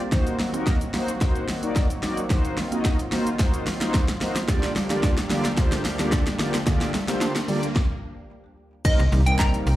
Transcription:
Already playing: analog synth pad C4
0.12 synth pluck D#3, analog synth pad D#3 F#3 A#3 F#4, analog polysynth A#3 D#4 F#4 C5, kick, snare, riser, shaker
0.27 closed hi-hat, shaker
0.39 synth pluck A#3, snare, open hi-hat, shaker
0.54 analog polysynth A#3 D#4 F#4 A#4, synth pluck C4, closed hi-hat, shaker
0.67 synth pluck D#4, kick, snare, shaker
0.81 closed hi-hat, shaker
0.94 analog polysynth A#3 D#4 F#4 C5, synth pluck A#3, snare, open hi-hat, shaker
1.08 closed hi-hat, shaker
1.21 analog polysynth A#3 D#4 F#4 C5, kick, snare, shaker
1.35 closed hi-hat, shaker
1.48 snare, open hi-hat, shaker
1.63 analog polysynth A#3 D#4 F#4 D5, closed hi-hat, shaker
1.76 synth pluck D#4, kick, snare, shaker
1.90 closed hi-hat, shaker
2.03 analog polysynth A#3 D#4 F#4 D5, snare, open hi-hat, shaker
2.17 closed hi-hat, shaker
2.30 synth pluck D#3, analog polysynth A#3 D#4 F#4 C5, analog synth pad F4, kick, snare, shaker
2.45 closed hi-hat, shaker
2.57 synth pluck A#3, snare, open hi-hat, shaker
2.72 analog polysynth A#3 D#4 F#4 D#5, synth pluck C4, closed hi-hat, shaker
2.85 synth pluck D#4, kick, snare, shaker
2.99 closed hi-hat, shaker
3.12 analog polysynth A#3 D#4 F#4 C5, synth pluck A#3, snare, open hi-hat, shaker
3.27 closed hi-hat, shaker
3.39 analog polysynth A#3 D#4 F#4 C5, kick, snare, shaker
3.54 closed hi-hat, shaker
3.67 snare, open hi-hat, shaker
3.81 analog polysynth A#3 D#4 F#4 C5, snare, closed hi-hat, shaker
3.94 synth pluck D#4, kick, snare, shaker
4.08 snare, closed hi-hat, shaker
4.21 analog polysynth A#3 D#4 F#4 C5, snare, open hi-hat, shaker
4.36 snare, closed hi-hat, shaker
4.48 analog synth pad D2 F3 G3 A#3 D4 G4, analog polysynth D3 A#3 F4 G4 D5, synth pluck D3, kick, snare, shaker
4.63 snare, closed hi-hat, shaker
4.76 synth pluck G3, snare, open hi-hat, shaker
4.90 analog polysynth D3 A#3 F4 G4 D5, synth pluck A#3, snare, closed hi-hat, shaker
5.03 synth pluck D4, kick, snare, shaker
5.18 snare, closed hi-hat, shaker
5.30 analog polysynth D3 A#3 F4 G4 D5, synth pluck G3, snare, open hi-hat, shaker
5.45 snare, closed hi-hat, shaker
5.57 analog polysynth D3 A#3 F4 G4 C5, kick, snare, shaker
5.72 snare, closed hi-hat, shaker
5.85 snare, open hi-hat, shaker
5.99 analog polysynth D3 A#3 F4 G4 D5, snare, closed hi-hat, shaker
6.12 synth pluck D4, kick, snare, shaker
6.27 snare, closed hi-hat, shaker
6.39 analog polysynth D3 A#3 F4 G4 D5, snare, open hi-hat, shaker
6.54 snare, closed hi-hat, shaker
6.66 analog polysynth D3 A#3 F4 G4 D5, synth pluck D3, kick, snare, shaker
6.81 snare, closed hi-hat, shaker
6.94 synth pluck G3, snare, open hi-hat, shaker
7.08 analog polysynth D3 A#3 F4 G4 C5, synth pluck A#3, snare, closed hi-hat, shaker
7.21 synth pluck D4, snare, shaker
7.36 snare, closed hi-hat, shaker
7.48 analog polysynth D3 A#3 F4 G4 D5, synth pluck G3, open hi-hat, shaker
7.63 closed hi-hat, shaker
7.76 kick, snare
8.84 analog polysynth G3 A#3 C4 D#4 A#4, digital synth lead D#5, kick, crash, impact, shaker
8.99 fm bass C2, closed hi-hat, shaker
9.12 fm bass C2, analog polysynth G3 A#3 C4 D#4 G4, open hi-hat, shaker
9.26 analog polysynth G3 A#3 C4 D#4 A#4, digital synth lead G5, closed hi-hat, shaker
9.39 digital synth lead A#5, kick, snare, clap, shaker
9.54 closed hi-hat, shaker
9.67 fm bass C2, open hi-hat, shaker

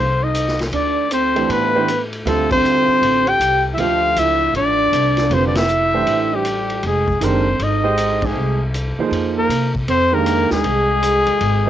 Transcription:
Already playing: upright bass C2, trumpet C5
0.23 trombone D#4, trumpet D#5
0.35 hi-hat pedal, ride
0.48 snare
0.59 snare, ride
0.72 upright bass D2, trombone D4, trumpet D5, ride
1.11 trombone C4, trumpet C5, hi-hat pedal, ride
1.35 grand piano E3 A3 D4 G4 C5, ride
1.49 upright bass A2, trombone B3, trumpet B4, ride
1.75 grand piano E3 A3 D4 G4 C5
1.88 hi-hat pedal, ride
2.13 ride
2.25 upright bass D2, grand piano D3 G3 C4 F4 C5, trombone A3, trumpet A4, ride
2.51 trombone C4, trumpet C5, kick, ride
2.65 hi-hat pedal
2.88 muted upright bass stroke
3.02 upright bass A1, ride
3.27 trombone G4, trumpet G5, ride
3.39 upright bass C2, hi-hat pedal, ride
3.73 trombone E4, trumpet E5
3.77 upright bass D2, grand piano F3 A3 D4 G4 C5, trombone F4, trumpet F5, ride
4.16 upright bass C#2, trombone E4, trumpet E5, hi-hat pedal, ride
4.53 upright bass A1, trombone D4, trumpet D5, ride
4.92 upright bass C2, hi-hat pedal, ride
5.17 snare, ride
5.30 upright bass F1, grand piano D3 G3 C4 F4 B4, trombone C4, ride
5.34 trumpet C5
5.47 trombone D4, trumpet D5
5.55 trombone E4, trumpet E5, snare, ride
5.69 hi-hat pedal
5.94 grand piano E3 A3 D4 G4 C5
6.07 upright bass A1, ride
6.33 trombone G3, trumpet G4
6.45 hi-hat pedal, ride
6.70 ride
6.83 upright bass F1, trombone G#3, trumpet G#4, ride
7.08 kick
7.21 upright bass F#1, grand piano D#3 G#3 D4 G4 A#4, trombone C4, trumpet C5, hi-hat pedal, ride
7.59 upright bass G#1, trombone D#4, trumpet D#5, ride
7.83 grand piano G#3 D#4 G4 C5 D#5
7.97 hi-hat pedal, ride
8.22 trombone G#3, kick, ride
8.26 trumpet G#4
8.35 upright bass C2
8.74 hi-hat pedal, ride
8.98 grand piano F3 A#3 D#4 G#4 C5, muted upright bass stroke
9.11 upright bass F2, ride
9.38 trombone A#3, trumpet A#4
9.49 upright bass C3, hi-hat pedal, ride
9.75 kick
9.88 upright bass F2, trombone C4, trumpet C5, ride
10.12 grand piano D#3 G#3 D4 G4 A#4, trombone A#3, trumpet A#4
10.26 hi-hat pedal, ride
10.50 upright bass D#2, trombone G#3, trumpet G#4, snare
10.63 upright bass C2, ride
11.03 hi-hat pedal, ride
11.27 upright bass D#2, ride
11.41 upright bass G#1, ride
11.66 grand piano F3 A#3 D#4

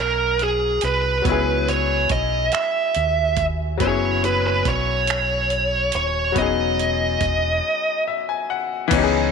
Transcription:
Already playing: fingered electric bass B1, grand piano F#3 B3 C#4 D#4 E4 G#4 C#5
0.00 lead electric guitar A#4
0.39 lead electric guitar G#4, closed hi-hat
0.81 fingered electric bass C2, lead electric guitar B4, closed hi-hat
1.22 fingered electric bass C#2, grand piano F#3 B3, kick, closed hi-hat
1.27 grand piano C#4 E4
1.32 grand piano G#4
1.68 lead electric guitar C#5, closed hi-hat
2.09 fingered electric bass B1, lead electric guitar D#5, kick, closed hi-hat
2.52 lead electric guitar E5, finger snap, closed hi-hat
2.95 fingered electric bass D#2, closed hi-hat
3.37 kick, closed hi-hat
3.77 fingered electric bass F#1, grand piano F#3 B3, lead electric guitar C#5, kick, closed hi-hat
3.82 grand piano C#4 E4
3.87 grand piano G#4
4.24 lead electric guitar B4, closed hi-hat
4.47 lead electric guitar B4
4.65 fingered electric bass B1, lead electric guitar C#5, kick, closed hi-hat
5.07 finger snap, closed hi-hat
5.50 closed hi-hat
5.92 fingered electric bass D#1, lead electric guitar C#5, closed hi-hat
6.32 fingered electric bass E1, grand piano F#3 B3, kick, closed hi-hat
6.37 grand piano C#4 D#4, lead electric guitar D#5
6.42 grand piano G#4
6.79 closed hi-hat
7.21 fingered electric bass E1, kick, closed hi-hat
8.07 grand piano E5
8.29 grand piano G#5
8.50 grand piano F#5
8.88 fingered electric bass C#2, grand piano E3 B3, kick, closed hi-hat, crash
8.93 grand piano C#4 D#4
8.97 grand piano G4
9.04 grand piano G#4

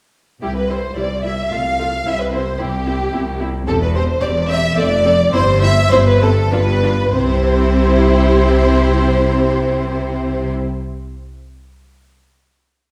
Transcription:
0.42 double bass section C2, cello section C2, viola section G3 E4, violin section G4
0.55 violin section B4
0.69 viola section G3 E4, violin section C5
0.96 cello section C2, double bass section C2, viola section G3 E4, violin section D5
1.24 viola section G3 E4, violin section E5
1.51 cello section C2, double bass section C2, viola section A3 F4, violin section F5
1.79 viola section A3 F4
2.06 cello section C2, double bass section C2, viola section C4 E4, violin section E5
2.20 violin section B4
2.33 viola section C4 E4, violin section C5
2.60 double bass section C2, cello section C2, viola section C4 E4, violin section G4
2.86 viola section C4 E4
3.13 double bass section C2, cello section C2, viola section C4 E4
3.40 viola section C4 E4
3.67 double bass section E1, cello section E2, viola section C4 G4, violin section A4
3.81 violin section B4
3.94 viola section C4 G4, violin section C5
4.21 double bass section E1, cello section E2, viola section C4 G4, violin section D5
4.49 viola section C4 G4, violin section E5
4.77 double bass section F1, cello section F2, viola section C4 A4, violin section D5
5.05 viola section C4 A4
5.33 double bass section G1, cello section G2, viola section C4 E4, violin section C5
5.62 viola section C4 E4, violin section E5
5.91 double bass section G1, cello section G2, viola section C4 E4, violin section C5
6.06 violin section B4
6.21 viola section C4 E4, violin section A4
6.52 double bass section G1, cello section G2, viola section D4 F4, violin section B4
6.83 viola section D4 F4
7.14 double bass section C2, cello section C3, violin section C4 C5, viola section E4 G4

